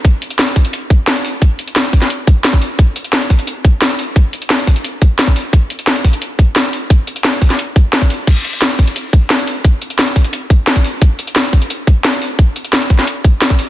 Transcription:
\new DrumStaff \with { instrumentName = "Drums" } \drummode { \time 4/4 \tempo 4 = 175 <hh bd>8 hh16 hh16 <hh sn>16 hh16 <hho bd>16 hh16 hh8 <hh bd>8 <hh sn>16 hh16 hho8 | <hh bd>8 hh16 hh16 <hh sn>16 hh16 <hho bd>16 <hh sn>16 hh8 <hh bd>8 <hh sn>16 <hh bd>16 hho8 | <hh bd>8 hh16 hh16 <hh sn>16 hh16 <hho bd>16 hh16 hh8 <hh bd>8 <hh sn>16 hh16 hho8 | <hh bd>8 hh16 hh16 <hh sn>16 hh16 <hho bd>16 hh16 hh8 <hh bd>8 <hh sn>16 <hh bd>16 hho8 |
<hh bd>8 hh16 hh16 <hh sn>16 hh16 <hho bd>16 hh16 hh8 <hh bd>8 <hh sn>16 hh16 hho8 | <hh bd>8 hh16 hh16 <hh sn>16 hh16 <hho bd>16 <hh sn>16 hh8 <hh bd>8 <hh sn>16 <hh bd>16 hho8 | <cymc hh bd>8 hh16 hh16 <hh sn>16 hh16 <hho bd>16 hh16 hh8 <hh bd>8 <hh sn>16 hh16 hho8 | <hh bd>8 hh16 hh16 <hh sn>16 hh16 <hho bd>16 hh16 hh8 <hh bd>8 <hh sn>16 <hh bd>16 hho8 |
<hh bd>8 hh16 hh16 <hh sn>16 hh16 <hho bd>16 hh16 hh8 <hh bd>8 <hh sn>16 hh16 hho8 | <hh bd>8 hh16 hh16 <hh sn>16 hh16 <hho bd>16 <hh sn>16 hh8 <hh bd>8 <hh sn>16 <hh bd>16 hho8 | }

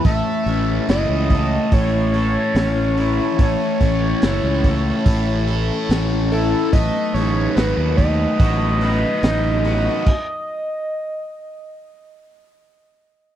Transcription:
<<
  \new Staff \with { instrumentName = "Analog synth lead" } { \time 4/4 \key a \lydian \tempo 4 = 72 e''4 dis''4 cis''2 | cis''2. r8 a'8 | dis''8 cis''8 b'8 dis''2~ dis''8~ | dis''2. r4 | }
  \new Staff \with { instrumentName = "Distorted electric guitar" } { \time 4/4 \key a \lydian a8 cis'8 e'8 a8 e'8 a'8 cis'8 e'8 | a8 cis'8 e'8 a8 e'8 a'8 cis'8 e'8 | a8 dis'8 fis'8 a8 fis'8 b'8 dis'8 fis'8 | r1 | }
  \new Staff \with { instrumentName = "Transistor combo organ" } { \time 4/4 \key a \lydian <e a cis' a'>1~ | <e a cis' a'>1 | <fis b dis' b'>1 | r1 | }
  \new Staff \with { instrumentName = "Fingered electric bass" } { \clef bass \time 4/4 \key a \lydian a,,16 r16 a,,8 fis,,16 cis,8. a,,4 a,,4 | a,,16 r16 a,,8 fis,,16 cis,8. a,,4 a,,4 | a,,16 r16 a,,8 gis,,16 dis,8. a,,4 a,,4 | r1 | }
  \new DrumStaff \with { instrumentName = "Drums" } \drummode { \time 4/4 <hho bd>8 hho8 <hho sn>8 <hho bd>8 <hho bd>8 hho8 <hho sn>8 hho8 | <hho bd>8 <hho bd>8 <hho sn>8 <hho bd>8 <hho bd>8 hho8 <hho sn>8 hho8 | <hho bd>8 hho8 <hho sn>8 <hho bd>8 <hho bd>8 hho8 <hho sn>8 hho8 | <cymc bd>4 r4 r4 r4 | }
>>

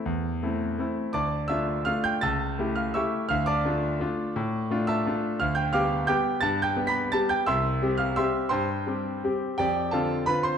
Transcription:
\new Staff \with { instrumentName = "Grand piano" } { \time 3/4 \key d \dorian \tempo 4 = 171 << { <a' e'' a''>2~ <a' e'' a''>8 r8 | <d'' a'' d'''>4 <e'' e'''>4 <f'' f'''>8 <g'' g'''>8 | <a'' e''' a'''>4. <f'' f'''>8 <e'' cis''' e'''>4 | <f'' f'''>8 <d'' a'' d'''>2~ <d'' a'' d'''>8~ |
<d'' a'' d'''>4. <e'' a'' e'''>4. | \key c \major <f'' f'''>8 <g'' g'''>8 <f'' d''' f'''>4 <g'' d''' g'''>4 | \tuplet 3/2 { <a'' a'''>4 <g'' g'''>8~ <g'' g'''>8 <b'' b'''>4 } <a'' a'''>8 <g'' g'''>8 | <e'' c''' e'''>4. <f'' f'''>8 <e'' c''' e'''>4 |
<c'' g'' c'''>4 r2 | <g' d'' g''>4 <a' f'' a''>4 <b' b''>8 <c'' c'''>8 | } \\ { e,4 <a c' e'>4 <a c' e'>4 | d,4 <a d' f'>4 <a d' f'>4 | cis,4 <a e' g'>4 <a e' g'>4 | d,4 <a d' f'>4 <a d' f'>4 |
a,4 <a d' f'>4 <a d' f'>4 | d,4 <g b g'>4 <g b g'>4 | g,4 <g b g'>4 <g b g'>4 | c,4 <g c' g'>4 <g c' g'>4 |
g,4 <g c' g'>4 <g c' g'>4 | f,4 <d c' f'>4 <d c' f'>4 | } >> }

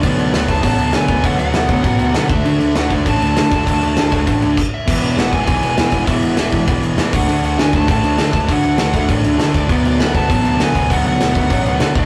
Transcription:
<<
  \new Staff \with { instrumentName = "Lead electric guitar" } { \time 4/4 \key b \dorian \tempo 4 = 199 d''4 b''8 a''8 a''4 gis''4 | fis''8 fis''2. e''8~ | e''8 e''8 fis''8 d''8 a''2~ | a''2. r8 e''8~ |
e''4 fis''8 gis''8 gis''2 | e''2 r4. fis''8~ | fis''8 fis''8 gis''8 a''8 a''2 | fis''2 r4. d''8~ |
d''4 b''8 a''8 a''4 gis''4 | fis''8 fis''2. e''8 | }
  \new Staff \with { instrumentName = "Distorted electric guitar" } { \clef bass \time 4/4 \key b \dorian <b, fis b>4 <b, fis b>8 <b, fis b>8 <b, fis b>4 <b, fis b>8 <b, fis b>8 | <b, fis b>4 <b, fis b>8 <b, fis b>8 <b, fis b>4 <b, fis b>8 <d a d'>8 | <d a d'>4 <d a d'>8 <d a d'>8 <d a d'>4 <d a d'>8 <d a d'>8 | <d a d'>4 <d a d'>8 <d a d'>8 <d a d'>4 r4 |
<e, b, e>4 <e, b, e>8 <e, b, e>8 <e, b, e>4 <e, b, e>8 <e, b, e>8 | <e, b, e>4 <e, b, e>8 <e, b, e>8 <e, b, e>4 <e, b, e>8 <d a d'>8 | <d a d'>4 <d a d'>8 <d a d'>8 <d a d'>4 <d a d'>8 <d a d'>8 | <d a d'>4 <d a d'>8 <d a d'>8 <d a d'>4 <d a d'>8 <d a d'>8 |
<b, fis b>4 <b, fis b>8 <b, fis b>8 <b, fis b>4 <b, fis b>8 <b, fis b>8 | <b, fis b>4 <b, fis b>8 <b, fis b>8 <b, fis b>4 <b, fis b>8 <d a d'>8 | }
  \new Staff \with { instrumentName = "Distorted electric guitar" } { \clef bass \time 4/4 \key b \dorian <b, fis b>4. <b, fis b>4. <b, fis b>4 | <b, fis b>4. <b, fis b>4. <b, fis b>8 <d a d'>8~ | <d a d'>4 <d a d'>4. <d a d'>4 <d a d'>8~ | <d a d'>4 <d a d'>4. <d a d'>8 r4 |
<e, b, e>4. <e, b, e>4. <e, b, e>4 | <e, b, e>4. <e, b, e>4. <e, b, e>8 <d a d'>8~ | <d a d'>4 <d a d'>4. <d a d'>4 <d a d'>8~ | <d a d'>4 <d a d'>4. <d a d'>4 r8 |
<b, fis b>4. <b, fis b>4. <b, fis b>4 | <b, fis b>4. <b, fis b>4. <b, fis b>8 <d a d'>8 | }
  \new Staff \with { instrumentName = "Overdriven electric guitar" } { \clef bass \time 4/4 \key b \dorian <b, fis b>4 <b, fis b>8 <b, fis b>8 <b, fis b>4 <b, fis b>8 <b, fis b>8 | <b, fis b>4 <b, fis b>8 <b, fis b>8 <b, fis b>4 <b, fis b>8 <d a d'>8 | <d a d'>4 <d a d'>8 <d a d'>8 <d a d'>4 <d a d'>8 <d a d'>8 | <d a d'>4 <d a d'>8 <d a d'>8 <d a d'>4 r4 |
<e, b, e>4 <e, b, e>8 <e, b, e>8 <e, b, e>4 <e, b, e>8 <e, b, e>8 | <e, b, e>4 <e, b, e>8 <e, b, e>8 <e, b, e>4 <e, b, e>8 <d a d'>8 | <d a d'>4 <d a d'>8 <d a d'>8 <d a d'>4 <d a d'>8 <d a d'>8 | <d a d'>4 <d a d'>8 <d a d'>8 <d a d'>4 <d a d'>8 <d a d'>8 |
<b, fis b>4 <b, fis b>8 <b, fis b>8 <b, fis b>4 <b, fis b>8 <b, fis b>8 | <b, fis b>4 <b, fis b>8 <b, fis b>8 <b, fis b>4 <b, fis b>8 <d a d'>8 | }
  \new Staff \with { instrumentName = "Picked electric bass" } { \clef bass \time 4/4 \key b \dorian d,8 d,8 d,8 d,8 a,,8 d,8 d8 d,8 | d,8 d,8 d,8 d,8 a,,8 d,8 d8 d,8 | d,8 d,8 d,8 d,8 a,,8 d,8 d8 d,8 | d,8 d,8 d,8 d,8 a,,8 d,8 r4 |
e,,8 e,,8 e,,8 e,,8 b,,8 e,,8 e,8 e,,8 | e,,8 e,,8 e,,8 e,,8 b,,8 e,,8 e,8 d,8 | d,8 d,8 d,8 d,8 a,,8 d,8 d8 d,8 | d,8 d,8 d,8 d,8 a,,8 d,8 d8 d,8 |
d,8 d,8 d,8 d,8 a,,8 d,8 d8 d,8 | d,8 d,8 d,8 d,8 a,,8 d,8 d8 d,8 | }
  \new DrumStaff \with { instrumentName = "Drums" } \drummode { \time 4/4 <cymc bd>8 cymc8 <cymc sn>8 <cymc bd>8 <cymc bd>8 cymc8 <cymc sn>8 <cymc bd>8 | <cymc bd>8 cymc8 <cymc sn>8 <cymc bd>8 <cymc bd>8 cymc8 <cymc sn>8 <cymc bd>8 | cymc8 cymc8 <cymc sn>8 <cymc bd>8 <cymc bd>8 cymc8 <cymc sn>8 <cymc bd>8 | <cymc bd>8 cymc8 <cymc sn>8 <cymc bd>8 <cymc bd>8 cymc8 <cymc bd>4 |
<cymc bd>8 cymc8 <cymc sn>8 <cymc bd>8 <cymc bd>8 cymc8 <cymc sn>8 <cymc bd>8 | <cymc bd>8 cymc8 <cymc sn>8 <cymc bd>8 <cymc bd>8 cymc8 <cymc sn>8 <cymc bd>8 | cymc8 cymc8 <cymc sn>8 <cymc bd>8 <cymc bd>8 cymc8 <cymc sn>8 <cymc bd>8 | <cymc bd>8 cymc8 <cymc sn>8 <cymc bd>8 <cymc bd>8 cymc8 <cymc sn>8 <cymc bd>8 |
<cymc bd>8 cymc8 <cymc sn>8 <cymc bd>8 <cymc bd>8 cymc8 <cymc sn>8 <cymc bd>8 | <cymc bd>8 cymc8 <cymc sn>8 <cymc bd>8 <cymc bd>8 cymc8 <cymc sn>8 <cymc bd>8 | }
>>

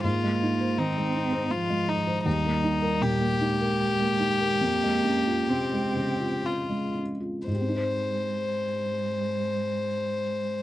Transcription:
<<
  \new Staff \with { instrumentName = "Violin" } { \time 3/4 \key aes \major \tempo 4 = 71 f'4 ees'4 f'8 ees'8 | ees'4 g'2~ | g'2 f'8 r8 | c''2. | }
  \new Staff \with { instrumentName = "Felt piano" } { \time 3/4 \key aes \major <aes, c''>16 aes16 ees'16 c''16 ees16 aes16 ees'16 c''8 aes16 ees'16 c''16 | ees,16 bes16 ees'16 bes'16 bes,16 bes16 ees'16 bes'8 bes16 ees'16 bes'16 | f,16 aes16 des'16 f'16 c16 aes16 des16 f'8 aes16 des'16 f'16 | <aes, c' ees' g' c''>2. | }
  \new Staff \with { instrumentName = "Cello" } { \time 3/4 \key aes \major bes4 c'4 f4 | g4. aes4. | bes4 c'4 r4 | aes2. | }
>>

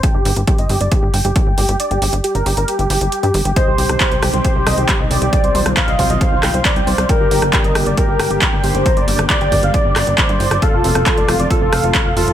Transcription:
<<
  \new Staff \with { instrumentName = "Soft synth lead" } { \time 4/4 \key g \minor \tempo 4 = 136 r1 | r1 | c''2 c''4. d''8~ | d''4 f''4 f''4 d''4 |
bes'2 bes'4. c''8~ | c''4 d''4 d''4 c''4 | a'2 a'4. a'8 | }
  \new Staff \with { instrumentName = "Supersaw synth" } { \time 4/4 \key g \minor g''16 g'16 g'16 r16 g'16 ees''16 g'16 d''16 g'16 g'16 g''16 g'16 g'16 g''16 g'16 g'16 | d''16 g'16 g'16 r16 g'16 bes'16 g'16 bes'16 g'16 g'16 g'16 g'16 g'16 g'16 g'16 g'16 | ees''16 g'16 g'16 r16 g'16 c''16 g'16 c''16 g'16 g'16 ees''16 g'16 g'16 ees''16 g'16 g'16 | g''16 c''16 c''16 r16 c''16 ees''16 c''16 ees''16 c''16 c''16 g''16 c''16 c''16 g''16 c''16 c''16 |
g''16 g'16 g'16 r16 g'16 ees''16 g'16 d''16 g'16 g'16 g''16 g'16 g'16 g''16 g'16 g'16 | bes''16 d''16 d''16 r16 d''16 g''16 d''16 f''16 d''16 d''16 d''16 d''16 d''16 d''16 d''16 d''16 | f''16 f'16 f'16 r16 f'16 d''16 f'16 d''16 f'16 f'16 f''16 f'16 f'16 f''16 f'16 f'16 | }
  \new Staff \with { instrumentName = "Analog synth pad" } { \time 4/4 \key g \minor << { r1 | r1 | g'1 | f'1 |
g'1~ | g'1 | f'1 | } \\ { r1 | r1 | <ees g c'>1~ | <ees g c'>1 |
<d g bes>1~ | <d g bes>1 | <c f a>1 | } >> }
  \new Staff \with { instrumentName = "Analog synth bass" } { \clef bass \time 4/4 \key g \minor r16 g,,16 g,,16 g,,16 r16 g,,16 g,,16 g,,16 r16 g,,16 g,,16 g,,16 r16 g,,16 g,,16 g,,16 | r16 g,,16 g,,16 g,,16 r16 g,,16 g,,16 g,,16 r16 g,,16 g,,16 g,,16 r16 g,16 g,,16 g,,16 | r16 c,16 c,16 c,16 r16 c,16 c,16 c,16 r16 c,16 c,16 c,16 r16 c,16 c,16 c,16 | r16 c,16 c,16 c,16 r16 c,16 c,16 c,16 r16 c,16 c,16 c,16 r16 c,16 c,16 c,16 |
r16 g,,16 g,,16 g,,16 r16 g,,16 g,,16 g,,16 r16 g,,16 g,,16 g,,16 r16 g,,16 g,,16 g,,16 | r16 g,,16 g,,16 g,,16 r16 g,,16 g,,16 g,,16 r16 g,,16 g,,16 g,,16 r16 g,16 g,,16 g,,16 | r16 f,,16 f,,16 f,,16 r16 f,,16 f,,16 f,,16 r16 f,,16 f,,16 f,,16 r16 f,,16 f,,16 f,,16 | }
  \new DrumStaff \with { instrumentName = "Drums" } \drummode { \time 4/4 <hh bd>8 hho16 hh16 <hh bd>16 hh16 hho16 hh16 <hh bd>8 hho16 hh16 <hh bd>8 hho16 hh16 | hh16 hh16 hho16 hh16 hh16 hh16 hho16 hh16 hh16 hh16 hho16 hh16 hh16 hh16 hho16 hh16 | <hh bd>8 hho16 <hh ss>16 <hc hh bd>16 hh16 <hho ss>16 hh16 <hh bd>8 <hho ss>16 hh16 <hc hh bd>8 hho16 hh16 | <hh bd>16 hh16 hho16 <hh ss>16 <hc hh bd>16 hh16 <hho bd>16 hh16 <hh bd>8 <hc hho ss>16 hh16 <hc hh bd>16 hh16 hho16 <hh ss>16 |
<hh bd>8 hho16 <hh ss>16 <hc hh bd>16 hh16 <hho ss>16 hh16 <hh bd>8 <hho ss>16 hh16 <hc hh bd>8 hho16 hh16 | <hh bd>16 hh16 hho16 <hh ss>16 <hc hh bd>16 hh16 <hho bd>16 hh16 <hh bd>8 <hc hho ss>16 hh16 <hc hh bd>16 hh16 hho16 <hh ss>16 | <hh bd>8 hho16 <hh ss>16 <hc hh bd>16 hh16 <hho ss>16 hh16 <hh bd>8 <hho ss>16 hh16 <hc hh bd>8 hho16 hh16 | }
>>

